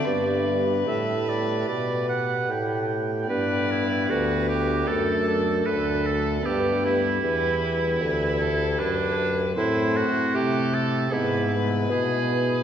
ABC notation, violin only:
X:1
M:4/4
L:1/8
Q:1/4=77
K:G
V:1 name="Violin"
B6- B z | d2 B2 A2 A2 | B2 B2 B A B2 | c2 A2 B B3 |]